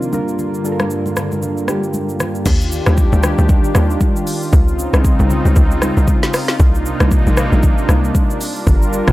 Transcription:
0.00 0.11 C3 medium
0.00 0.15 F3 medium
0.00 2.42 A#3 medium
0.00 0.15 C4 medium
0.00 0.13 D4 medium
0.00 0.15 D#4 medium
0.00 2.42 F4 medium
0.00 0.14 A#4 loud
0.00 0.11 D5 medium
0.00 shaker medium
0.12 2.43 G2 medium
0.12 2.43 D3 medium
0.12 0.56 G3 medium
0.12 0.56 D4 medium
0.12 0.56 F4 medium
0.12 0.57 A#4 loud
0.12 low conga medium
0.12 shaker medium
0.28 shaker soft
0.39 low conga medium
0.39 shaker medium
0.54 shaker soft
0.64 1.48 G3 medium
0.64 1.48 D4 medium
0.64 1.49 F4 medium
0.64 0.73 A4 medium
0.64 shaker medium
0.72 1.52 A#4 loud
0.80 cross-stick medium
0.80 high conga medium
0.80 shaker soft
0.90 shaker medium
1.06 high conga medium
1.06 shaker soft
1.16 cross-stick medium
1.16 low conga medium
1.16 shaker medium
1.32 high conga medium
1.32 shaker soft
1.42 low conga medium
1.42 shaker medium
1.57 shaker soft
1.67 2.31 G3 medium
1.67 2.32 D4 medium
1.67 2.32 F4 medium
1.67 2.33 G4 medium
1.67 cross-stick medium
1.67 high conga medium
1.67 shaker medium
1.83 shaker soft
1.94 high conga medium
1.94 shaker medium
2.09 shaker medium
2.20 cross-stick medium
2.20 low conga medium
2.20 shaker medium
2.35 shaker soft
2.45 2.81 D#2 loud
2.45 4.51 D#3 medium
2.45 4.50 D4 medium
2.45 8.37 F4 medium
2.45 4.51 G4 loud
2.45 kick loud
2.45 crash loud
2.45 low conga medium
2.45 shaker medium
2.61 shaker medium
2.72 shaker loud
2.86 3.09 D#2 loud
2.86 cross-stick loud
2.86 high conga medium
2.86 shaker medium
2.97 kick loud
2.97 shaker medium
3.12 3.35 D2 loud
3.12 high conga medium
3.12 shaker medium
3.23 cross-stick loud
3.23 low conga medium
3.23 shaker loud
3.38 3.61 D2 medium
3.38 high conga medium
3.38 shaker medium
3.49 kick loud
3.49 low conga medium
3.49 shaker medium
3.64 shaker medium
3.75 3.97 D#2 loud
3.75 cross-stick medium
3.75 high conga medium
3.75 shaker loud
3.90 shaker soft
4.01 kick medium
4.01 high conga medium
4.01 shaker medium
4.16 shaker medium
4.27 open hi-hat medium
4.27 shaker loud
4.42 shaker soft
4.52 4.88 C#2 loud
4.52 6.57 C#3 medium
4.52 6.57 C4 medium
4.52 6.57 D#4 medium
4.52 kick loud
4.52 low conga medium
4.52 shaker medium
4.68 shaker medium
4.79 shaker medium
4.93 5.16 C2 medium
4.93 cross-stick loud
4.93 high conga medium
4.93 shaker medium
5.04 kick loud
5.04 shaker medium
5.19 5.42 C2 medium
5.19 high conga medium
5.19 shaker medium
5.30 low conga medium
5.30 shaker loud
5.45 5.55 C#2 medium
5.45 high conga medium
5.45 shaker medium
5.56 5.91 C#2 loud
5.56 kick loud
5.56 low conga medium
5.56 shaker medium
5.71 shaker medium
5.82 cross-stick medium
5.82 high conga medium
5.82 shaker loud
5.97 6.06 C2 medium
5.97 shaker soft
6.08 kick medium
6.08 high conga medium
6.08 shaker medium
6.23 snare medium
6.23 shaker medium
6.34 cross-stick loud
6.34 open hi-hat medium
6.34 shaker loud
6.48 snare medium
6.48 shaker soft
6.59 6.95 C2 loud
6.59 8.39 C3 medium
6.59 8.39 A#3 medium
6.59 9.12 D4 medium
6.59 8.39 D#4 medium
6.59 kick loud
6.59 low conga medium
6.59 shaker medium
6.75 shaker medium
6.86 shaker medium
7.00 7.23 C2 loud
7.00 cross-stick loud
7.00 high conga medium
7.00 shaker soft
7.11 kick loud
7.11 shaker medium
7.27 7.49 A#1 medium
7.27 high conga medium
7.27 shaker medium
7.37 cross-stick loud
7.37 low conga medium
7.37 shaker loud
7.52 7.74 A#1 medium
7.52 high conga medium
7.52 shaker medium
7.63 kick loud
7.63 low conga medium
7.63 shaker medium
7.78 shaker medium
7.89 8.11 C2 loud
7.89 cross-stick medium
7.89 high conga medium
7.89 shaker loud
8.04 shaker medium
8.15 kick medium
8.15 high conga medium
8.15 shaker medium
8.30 shaker medium
8.41 9.12 G3 medium
8.41 9.12 F4 medium
8.41 9.12 A#4 loud
8.41 open hi-hat medium
8.41 shaker loud
8.56 shaker soft
8.67 9.02 G1 loud
8.67 kick loud
8.67 low conga medium
8.67 shaker medium
8.82 shaker medium
8.93 shaker loud
9.07 9.12 F1 loud
9.07 cross-stick loud
9.07 mid tom loud
9.07 high conga medium
9.07 shaker medium

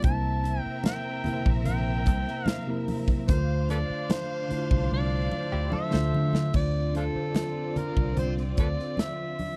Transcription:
0.02 0.58 C2 loud
0.02 1.10 C3 medium
0.02 1.11 A#3 medium
0.02 3.25 C4 medium
0.02 0.11 D4 medium
0.02 3.25 A#4 medium
0.02 1.12 C5 medium
0.02 3.25 E5 medium
0.02 0.60 A5 loud
0.02 kick loud
0.02 closed hi-hat medium
0.02 muted conga soft
0.10 1.15 E4 medium
0.44 closed hi-hat medium
0.44 muted conga soft
0.60 0.81 G5 loud
0.66 muted fingered electric bass stroke soft
0.84 1.49 G5 medium
0.84 snare loud
0.84 closed hi-hat loud
0.84 high conga medium
1.24 2.50 C3 medium
1.24 2.50 A#3 medium
1.24 2.51 E4 medium
1.24 1.33 A#4 medium
1.24 muted fingered electric bass stroke soft
1.24 closed hi-hat medium
1.24 low conga medium
1.33 2.55 C5 medium
1.46 1.64 A#1 medium
1.46 kick medium
1.65 2.07 A#1 medium
1.65 2.47 G5 medium
1.65 closed hi-hat medium
1.65 low conga medium
2.06 2.25 C2 medium
2.06 kick medium
2.06 closed hi-hat medium
2.06 muted conga soft
2.28 snare soft
2.46 2.84 F5 medium
2.46 snare loud
2.46 closed hi-hat medium
2.46 high conga medium
2.67 3.21 C3 medium
2.67 3.22 A#3 medium
2.67 3.22 E4 medium
2.67 3.23 A#4 medium
2.88 open hi-hat medium
2.88 high conga medium
3.07 kick medium
3.07 high conga medium
3.28 3.83 D2 loud
3.28 4.36 D3 medium
3.28 4.37 A3 medium
3.28 6.50 D4 medium
3.28 4.37 F4 medium
3.28 3.37 A#4 medium
3.28 6.50 C5 medium
3.28 3.67 C5 medium
3.28 6.50 F5 medium
3.28 kick loud
3.28 closed hi-hat medium
3.28 muted conga soft
3.38 4.41 C5 medium
3.69 3.79 A4 medium
3.69 3.78 B4 medium
3.69 4.13 D5 medium
3.69 closed hi-hat medium
3.69 muted conga soft
3.90 muted fingered electric bass stroke soft
4.10 4.92 C5 loud
4.10 snare loud
4.10 closed hi-hat loud
4.10 high conga medium
4.49 5.75 D3 medium
4.49 5.76 A3 medium
4.49 4.58 E4 medium
4.49 5.77 C5 medium
4.49 muted fingered electric bass stroke soft
4.49 closed hi-hat medium
4.58 5.80 F4 medium
4.71 4.89 C2 medium
4.71 kick medium
4.92 5.28 C2 medium
4.92 5.70 D5 loud
5.32 muted fingered electric bass stroke soft
5.32 muted conga soft
5.52 5.71 D2 medium
5.52 5.72 E4 soft
5.52 5.72 G4 medium
5.72 5.93 F4 medium
5.72 5.92 A4 medium
5.72 6.51 E5 loud
5.72 muted fingered electric bass stroke soft
5.72 high conga medium
5.91 6.11 D2 medium
5.91 6.46 D3 medium
5.91 6.47 A3 medium
5.91 6.47 F4 medium
5.91 6.51 A4 medium
5.91 6.51 C5 medium
5.91 6.48 C5 medium
5.91 snare medium
6.14 6.50 D3 loud
6.14 high conga medium
6.33 snare medium
6.33 high conga medium
6.53 7.08 D2 medium
6.53 6.89 D3 medium
6.53 9.57 D3 medium
6.53 9.57 C4 medium
6.53 6.90 D4 medium
6.53 9.57 F4 medium
6.53 6.91 F4 medium
6.53 6.91 C5 medium
6.53 9.57 D5 medium
6.53 6.93 D5 loud
6.53 kick loud
6.53 crash medium
6.53 muted conga soft
6.93 7.12 D3 medium
6.93 7.12 D4 medium
6.93 7.05 D4 medium
6.93 7.13 F4 medium
6.93 7.04 F4 medium
6.93 7.79 A4 medium
6.93 7.13 C5 medium
6.93 closed hi-hat medium
6.93 muted conga soft
7.13 8.57 D3 medium
7.13 8.58 D4 medium
7.13 8.59 F4 medium
7.13 8.59 C5 medium
7.13 muted fingered electric bass stroke soft
7.35 snare loud
7.35 closed hi-hat medium
7.35 high conga medium
7.76 8.18 A#4 medium
7.76 muted fingered electric bass stroke soft
7.76 closed hi-hat medium
7.76 low conga medium
7.97 8.15 C2 medium
7.97 kick medium
8.17 8.53 C2 medium
8.17 8.35 C5 medium
8.17 closed hi-hat medium
8.17 low conga medium
8.38 snare soft
8.57 8.76 D2 medium
8.57 8.68 A4 medium
8.57 8.67 B4 medium
8.57 9.02 D5 medium
8.57 kick medium
8.57 closed hi-hat medium
8.57 muted conga soft
8.79 snare soft
8.97 9.57 E5 medium
8.97 snare loud
8.97 closed hi-hat medium
8.97 high conga medium
9.39 open hi-hat medium
9.39 high conga medium

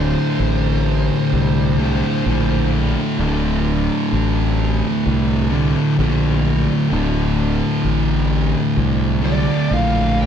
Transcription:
0.00 0.14 D1 medium
0.00 1.81 D2 medium
0.00 1.77 A2 medium
0.00 1.78 D3 loud
0.00 2.68 C5 medium
0.39 1.08 A1 medium
1.32 2.01 C2 loud
1.78 2.25 D2 medium
1.78 2.23 A2 medium
1.78 2.28 D3 medium
2.25 2.94 A#1 medium
2.25 3.18 D2 medium
2.25 3.16 A2 medium
2.25 3.21 D3 medium
3.19 3.87 D1 medium
3.19 5.53 D2 medium
3.19 5.49 A2 loud
3.19 5.50 D3 loud
4.12 4.80 A1 medium
5.06 5.74 C2 medium
5.51 5.97 D2 medium
5.51 5.95 A2 medium
5.51 6.00 D3 medium
5.97 6.67 A#1 medium
5.97 6.90 D2 medium
5.97 6.88 A2 medium
5.97 6.93 D3 medium
6.90 7.60 D1 loud
6.90 9.26 D2 medium
6.90 9.22 A2 medium
6.90 9.23 D3 loud
7.84 8.53 A1 medium
8.77 9.46 C2 medium
9.23 9.69 D2 medium
9.23 9.68 A2 medium
9.23 9.72 D3 medium
9.23 9.72 D5 medium
9.69 10.26 A#1 medium
9.69 10.26 D2 medium
9.69 10.26 A2 medium
9.69 10.26 D3 medium
9.69 10.20 F5 medium
10.21 10.26 G5 medium

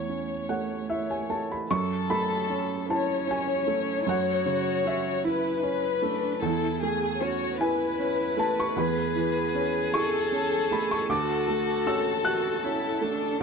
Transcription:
0.00 1.66 E2 soft
0.00 0.34 E3 soft
0.00 0.49 A3 soft
0.00 1.46 A3 medium
0.00 1.46 C#5 medium
0.09 0.73 C#4 soft
0.49 1.14 A3 soft
0.49 0.87 F#5 medium
0.89 1.54 E4 soft
0.89 1.08 E5 medium
1.11 1.29 G#5 medium
1.29 1.70 A3 soft
1.29 1.49 A5 medium
1.52 1.70 B5 medium
1.69 4.03 F#2 medium
1.69 2.85 A4 medium
1.69 2.07 C#6 medium
2.10 2.74 A3 medium
2.10 2.85 B5 medium
2.49 3.13 C#4 medium
2.89 4.08 C#4 medium
2.89 3.52 E4 medium
2.89 5.21 C#5 medium
2.89 3.27 A5 medium
3.27 3.91 C#4 medium
3.27 4.04 G#5 medium
3.67 4.30 A3 medium
4.06 6.38 F#2 medium
4.06 5.26 F#4 medium
4.06 4.82 F#5 medium
4.46 5.09 C#3 soft
4.85 5.48 C#4 medium
4.85 5.23 E5 medium
5.24 5.87 E4 medium
5.24 5.66 E4 medium
5.24 6.42 B4 medium
5.62 6.26 C#4 medium
5.62 6.03 C#4 medium
6.02 6.42 A3 soft
6.02 6.41 D4 medium
6.42 8.72 E2 medium
6.42 6.80 E4 medium
6.42 6.82 A4 medium
6.81 7.44 A3 soft
6.81 7.19 G#4 medium
6.81 7.22 G#4 medium
7.20 7.83 C#4 medium
7.20 7.60 F#4 medium
7.20 7.59 C#5 medium
7.58 8.75 E4 medium
7.58 8.22 E4 medium
7.58 9.89 B4 medium
7.58 8.34 G#5 medium
7.99 8.61 C#4 medium
8.37 8.99 A3 medium
8.37 8.56 A5 medium
8.60 8.76 C#6 medium
8.76 11.05 E2 medium
8.76 11.11 G#4 loud
8.76 9.90 B5 medium
9.15 9.78 E3 medium
9.54 10.17 C#4 medium
9.94 10.55 E4 medium
9.94 11.08 A4 medium
9.94 10.67 C#6 loud
10.32 10.94 C#4 medium
10.71 11.09 A3 medium
10.71 10.90 B5 medium
10.91 11.09 C#6 medium
11.09 13.36 D2 medium
11.09 12.25 F#4 loud
11.09 13.36 A4 medium
11.09 11.82 D6 loud
11.48 12.09 A3 medium
11.86 12.48 C#4 medium
11.86 12.22 E6 medium
12.25 12.66 F#4 medium
12.25 12.87 F#4 medium
12.25 13.36 F#6 loud
12.64 13.25 C#4 medium
12.64 13.05 E4 medium
13.01 13.43 A3 soft
13.01 13.41 D4 medium

